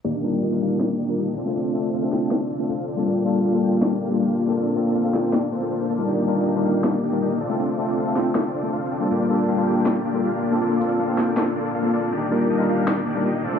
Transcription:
<<
  \new Staff \with { instrumentName = "Supersaw synth" } { \time 4/4 \key ees \lydian \tempo 4 = 159 <bes d' ees' g' d''>8 <bes d' ees' g' d''>8 <bes d' ees' g' ees''>8 <bes d' ees' g' f''>8 <bes d' ees' g' d''>8 <bes d' ees' g' d''>8 <bes d' ees' g' ees''>8 <c' d' f' a' d''>8 | <c' d' f' a' d''>8 <c' d' f' a' d''>8 <c' d' f' a' f''>8 <c' d' f' a' g''>8 <c' d' f' d''>8 <c' d' f' a' d''>8 <c' d' f' a' f''>8 <c' d' f' a' d''>8 | <bes d' f' g' d''>8 <bes d' f' g' d''>8 <bes d' f' g' f''>8 <bes d' f' g' g''>8 <bes d' g' d''>8 <bes d' f' g' d''>8 <bes d' f' g' f''>8 <bes d' f' g' d''>8 | <bes d' f' a' d''>8 <bes d' f' a' d''>8 <bes d' f' a' f''>8 <bes d' f' a' g''>8 <bes d' f' a' d''>8 <bes d' f' a' c''>8 <bes d' f' a' c''>8 <bes d' f' a' d''>8 |
<bes d' ees' g' d''>8 <bes d' ees' g' d''>8 <bes d' ees' g' ees''>8 <bes d' ees' g' f''>8 <bes d' ees' g' d''>8 <bes d' ees' g' d''>8 <bes d' ees' g' ees''>8 <c' d' f' a' d''>8 | <c' d' f' a' d''>8 <c' d' f' a' d''>8 <c' d' f' a' f''>8 <c' d' f' a' g''>8 <c' d' f' a' d''>8 <c' d' f' a' d''>8 <c' d' f' a' f''>8 <c' d' f' a' d''>8 | <bes d' f' g' d''>8 <bes d' f' g' d''>8 <bes d' f' g' f''>8 <bes d' f' g' g''>8 <bes d' f' g' d''>8 <bes d' f' g' d''>8 <bes d' f' g' f''>8 <bes d' f' g' d''>8 | <bes d' f' a' d''>8 <bes d' f' a' d''>8 <bes d' f' a' f''>8 <bes d' f' a' g''>8 <bes d' f' a' d''>8 <bes d' f' a' d''>8 <bes d' f' a' f''>8 <bes d' f' a' d''>8 |
<bes d' ees' g' d''>8 <bes d' ees' g' d''>8 <bes d' ees' g' ees''>8 <bes d' ees' g' f''>8 <bes d' ees' g' d''>8 <bes d' ees' g' d''>8 <bes d' ees' g' ees''>8 <c' d' f' a' d''>8 | }
  \new Staff \with { instrumentName = "Tine electric piano" } { \time 4/4 \key ees \lydian r8 <g d' ees' f' bes'>8. <g d' ees' f' bes'>8. <g d' ees' f' bes'>16 r8 <g d' ees' f' bes'>16 r8. <a c' d' f' a'>16~ | <a c' d' f' a'>8 <a c' d' f' a'>8. <a c' d' f' a'>8. <a c' d' f' a'>16 r8 <a c' d' f' a'>16 r8. <g bes d' f' a'>16~ | <g bes d' f' a'>8 <g bes d' f' a'>8. <g bes d' f' a'>8. <g bes d' f' a'>16 r8 <g bes d' f' a'>16 r8. <bes c' d' f' a'>16~ | <bes c' d' f' a'>8 <bes c' d' f' a'>8. <bes c' d' f' a'>8. <bes c' d' f' a'>16 r8 <bes c' d' f' a'>16 r8. <g d' ees' f' bes'>16~ |
<g d' ees' f' bes'>8 <g d' ees' f' bes'>8. <g d' ees' f' bes'>8. <g d' ees' f' bes'>16 r8 <g d' ees' f' bes'>16 r8. <a c' d' f' a'>16~ | <a c' d' f' a'>8 <a c' d' f' a'>8. <a c' d' f' a'>8. <a c' d' f' a'>16 r8 <a c' d' f' a'>16 r8. <g bes d' f' a'>16~ | <g bes d' f' a'>8 <g bes d' f' a'>8. <g bes d' f' a'>8. <g bes d' f' a'>16 r8 <g bes d' f' a'>16 r8. <bes c' d' f' a'>16~ | <bes c' d' f' a'>8 <bes c' d' f' a'>8. <bes c' d' f' a'>8. <bes c' d' f' a'>16 r4 <bes c' d' f' a'>8. |
r8 <g d' ees' f' bes'>8. <g d' ees' f' bes'>8. <g d' ees' f' bes'>16 r8 <g d' ees' f' bes'>16 r8. <a c' d' f' a'>16 | }
  \new DrumStaff \with { instrumentName = "Drums" } \drummode { \time 4/4 r4 r4 sn4 r4 | r4 r8 sn8 sn4 r4 | r4 r4 sn4 r4 | r4 r8 sn8 sn4 r4 |
r4 r4 sn4 r4 | r4 r8 sn8 sn4 r4 | r4 r4 sn4 r4 | r4 r8 sn8 sn4 r4 |
r4 r4 sn4 r4 | }
>>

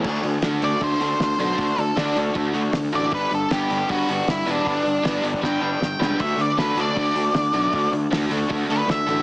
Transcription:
<<
  \new Staff \with { instrumentName = "Lead electric guitar" } { \time 4/4 \key d \major \tempo 4 = 156 r4. d''8 c''4 c''8 c''8~ | c''8 a'8 d'8 r2 d''8 | b'8 a'8 g'4 fis'4 e'8 d'8~ | d'4. r8 g''2 |
e''8 d''8 b'8 d''2~ d''8~ | d''8 r2 b'8 e''4 | }
  \new Staff \with { instrumentName = "Overdriven electric guitar" } { \time 4/4 \key d \major <d d' fis'>8 <d d'>8 <d d'>8 <d d' fis'>8 <d d'>8 <d d' fis'>8 <d d'>8 <d d'>8 | <d d' fis'>8 <d d'>8 <d d'>8 <d d' fis'>8 <d d'>8 <d d' fis'>8 <d d'>8 <d d'>8 | <g b d'>8 <g d'>8 <g d'>8 <g b d'>8 <g d'>8 <g b d'>8 <g d'>8 <g d'>8 | <g b d'>8 <g d'>8 <g d'>8 <g b d'>8 <g d'>8 <g b d'>8 <g d'>8 <g d'>8 |
<d d' fis'>8 <d d'>8 <d d'>8 <d d' fis'>8 <d d'>8 <d d' fis'>8 <d d'>8 <d d'>8 | <d d' fis'>8 <d d'>8 <d d'>8 <d d' fis'>8 <d d'>8 <d d' fis'>8 <d d'>8 <d d'>8 | }
  \new Staff \with { instrumentName = "Overdriven electric guitar" } { \time 4/4 \key d \major r4 <d d' fis' a'>8 r8 <d d' fis' a'>8 r4 <d d' fis' a'>8 | r4 <d d' fis' a'>8 r8 <d d' fis' a'>8 r4 <d d' fis' a'>8 | r4 <g b d' b'>8 r8 <g b d' b'>8 r4 <g b d' b'>8 | r4 <g b d' b'>8 r8 <g b d' b'>8 r4 <g b d' b'>8 |
r4 <d d' fis' a'>8 r8 <d d' fis' a'>8 r4 <d d' fis' a'>8 | r4 <d d' fis' a'>8 r8 <d d' fis' a'>8 r4 <d d' fis' a'>8 | }
  \new Staff \with { instrumentName = "Picked electric bass" } { \clef bass \time 4/4 \key d \major d,8 d,8 d,8 d,8 d,8 d,8 d,8 b,,8 | d,8 d,8 d,8 d,8 d,8 d,8 d,8 a,,8 | g,,8 g,,8 g,,8 g,,8 g,,8 g,,8 g,,8 e,,8 | g,,8 g,,8 g,,8 g,,8 g,,8 g,,8 g,,8 cis,8 |
d,8 d,8 d,8 d,8 d,8 d,8 d,8 b,,8 | d,8 d,8 d,8 d,8 d,8 d,8 d,8 a,,8 | }
  \new DrumStaff \with { instrumentName = "Drums" } \drummode { \time 4/4 <cymc bd>8 hho8 <hho sn>8 hho8 <hho bd>8 hho8 <hho sn>8 hho8 | <hho bd>8 hho8 <hho sn>8 hho8 <hho bd>8 hho8 <hho sn>8 hho8 | <hho bd>8 hho8 <hho sn>8 hho8 <hho bd>8 hho8 <hho sn>8 hho8 | <hho bd>8 hho8 <hho sn>8 hho16 bd16 <bd sn>4 sn8 sn8 |
<cymc hho bd>8 hho8 <hho sn>8 hho8 <hho bd>8 hho8 <hho sn>8 hho8 | <hho bd>8 hho8 <hho sn>8 hho8 <hho bd>8 hho8 <hho sn>8 hho8 | }
>>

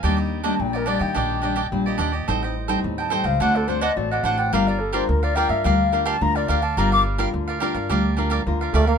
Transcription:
<<
  \new Staff \with { instrumentName = "Flute" } { \time 4/4 \key g \minor \tempo 4 = 107 r8. a''16 g''16 bes'16 d''16 g''4. r8. | r4 r16 a''16 g''16 f''16 fis''16 a'16 c''16 ees''16 d''16 ees''16 fis''16 g''16 | f''16 d''16 a'16 c''16 bes'16 d''16 g''16 e''16 f''8. a''16 bes''16 d''16 f''16 a''16 | bes''16 d'''16 r2. r8 | }
  \new Staff \with { instrumentName = "Cavaquinho" } { \time 4/4 \key g \minor <d' g' d'' ees''>16 <d'' ees''>8 <d' g' d'' ees''>16 r16 <g' d'' ees''>16 <d' g' d'' ees''>16 <g' d'' ees''>16 <d' g' d'' ees''>8 <d' g' d'' ees''>16 <d' g' d'' ees''>16 r16 <g' d'' ees''>16 <d' g' d'' ees''>16 <g' d'' ees''>16 | <a' c'' ees'' g''>16 <c'' ees'' g''>8 <a' c'' ees'' g''>16 r16 <c'' ees'' g''>16 <a' c'' ees'' g''>16 <c'' ees'' g''>16 <d' c'' d'' fis''>8 <d' c'' d'' fis''>16 <d' c'' d'' fis''>16 r16 <c'' d'' fis''>16 <d' c'' d'' fis''>16 <c'' d'' fis''>16 | <g' bes' d'' f''>16 <bes' d'' f''>8 <g' bes' d'' f''>16 r16 <bes' d'' f''>16 <g' bes' d'' f''>16 <bes' d'' f''>16 <g' bes' d'' f''>8 <g' bes' d'' f''>16 <g' bes' d'' f''>16 r16 <bes' d'' f''>16 <g' bes' d'' f''>16 <bes' d'' f''>16 | <g' bes' d'' f''>16 <bes' d'' f''>8 <g' bes' d'' f''>16 r16 <bes' d'' f''>16 <g' bes' d'' f''>16 <bes' d'' f''>16 <g' bes' d'' f''>8 <g' bes' d'' f''>16 <g' bes' d'' f''>16 r16 <bes' d'' f''>16 <g' bes' d'' f''>16 <bes' d'' f''>16 | }
  \new Staff \with { instrumentName = "Nylon-string guitar" } { \time 4/4 \key g \minor << { <g bes d'>8. <g bes d'>8. <g bes d'>4 <g bes d'>16 r16 <g bes d'>8. r16 | <g c' ees'>8 r16 <g c' ees'>8. <g c' ees'>8 <a c' fis'>8 <a c' fis'>16 r16 <a c' fis'>4 | <d' f' bes'>8 r16 <d' f' bes'>8. <d' f' bes'>8. r16 <d' f' bes'>8 <d' f' bes'>8. r16 | <d' f' bes'>8 r16 <d' f' bes'>8. <d' f' bes'>8. r16 <d' f' bes'>8 <d' f' bes'>8. r16 | } \\ { ees4 bes,4 ees4 bes,4 | a,4 a,4 d4 a,4 | g4 d4 g4 d4 | g4 d4 g4 d4 | } >> }
  \new Staff \with { instrumentName = "Trombone" } { \time 4/4 \key g \minor r1 | r1 | r1 | r2. r8 a16 bes16 | }
  \new Staff \with { instrumentName = "Upright bass" } { \clef bass \time 4/4 \key g \minor ees,4 bes,,8. ees16 bes,,4 bes,,8 ees,8 | a,,4 ees,8. cis,16 d,4 a,,8 a,,8 | g,,4 d,8. g,16 d,4 d,8 d,8 | g,,4 d,8. g,16 d,4 d,8 d,8 | }
>>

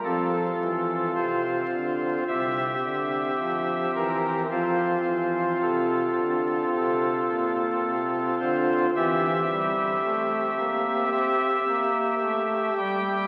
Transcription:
<<
  \new Staff \with { instrumentName = "Pipe organ" } { \time 4/4 \key f \major \tempo 4 = 54 << { a'4 c''4 e''4. bes'8 | c''4 a'4 a'4. c''8 | e''2 e''4. g''8 | } \\ { <c' f'>2 <c' g'>2 | <c' f'>1 | <c' g'>1 | } >> }
  \new Staff \with { instrumentName = "Pipe organ" } { \clef bass \time 4/4 \key f \major <f, f>8 e8 c8 d8 <c, c>8 d8 f8 e8 | <f, f>8 e8 c8 d8 c8 bes,8 c8 d8 | <e, e>8 g8 a8 bes8 c'8 bes8 a8 g8 | }
>>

